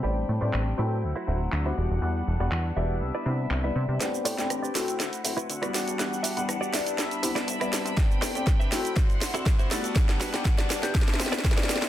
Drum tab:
HH |--------------------------------|--------------------------------|x---o-x-x---o-x-x-x-o-x-x-x-o-x-|x---o-x-x---o-x-x-x-o-x-x-x-o-x-|
SH |--------------------------------|--------------------------------|x-x-x-x-x-x-x-x-x-x-x-x-x-x-x-x-|x-x-x-x-x-x-x-x-x-x-x-x-x-x-x-x-|
CP |--------x---------------x-------|--------x---------------x-------|--------------------------------|--------------------------------|
SD |--------------------------------|--------------------------------|o-----o-r---o---o---------r-o---|o-------r---o---o-----o---r-o---|
BD |--------------------------------|--------------------------------|--------------------------------|--------------------------------|

HH |x---o-x-x---o-x-x-x-o-x-x-x-o-x-|x-x-o-x-x---o-x-x-x-o-x-x-x-o-x-|
SH |x-x-x-x-x-x-x-x-x-x-x-x-x-x-x-x-|x-x-x-x-x-x-x-x-x-x-x-x-x-x-x-x-|
CP |--------------------------------|--------------------------------|
SD |o---o---o---o---o---o---o---o---|o-o-o-o-o-o-o-o-ooooooooooooooo-|
BD |o-------o-------o-------o-------|o-------o-------o-------o-------|